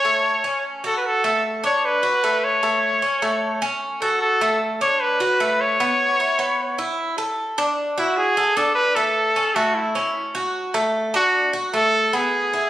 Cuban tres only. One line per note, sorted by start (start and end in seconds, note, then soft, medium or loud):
0.05 0.43 A3 medium
0.44 0.83 C#4 medium
0.84 1.22 F#4 medium
1.24 1.62 A3 medium
1.64 2.02 D4 medium
2.03 2.22 F#4 medium
2.24 2.62 A3 medium
2.63 3.01 A3 medium
3.02 3.21 C#4 medium
3.22 3.61 A3 medium
3.62 4.00 C#4 medium
4.02 4.40 F#4 medium
4.41 4.80 A3 medium
4.81 5.19 D4 medium
5.20 5.39 F#4 medium
5.40 5.79 A3 medium
5.80 6.18 B3 medium
6.20 6.39 E4 medium
6.39 6.77 B3 medium
6.79 7.17 E4 medium
7.18 7.57 A4 medium
7.58 7.96 D4 medium
7.98 8.36 F#4 medium
8.37 8.56 A4 medium
8.57 8.95 D4 medium
8.96 9.35 A3 medium
9.36 9.55 C#4 medium
9.56 9.94 A3 medium
9.95 10.34 C#4 medium
10.35 10.73 F#4 medium
10.74 11.13 A3 medium
11.14 11.52 D4 medium
11.53 11.73 F#4 medium
11.74 12.12 A3 medium
12.13 12.52 B3 medium
12.53 12.70 E4 medium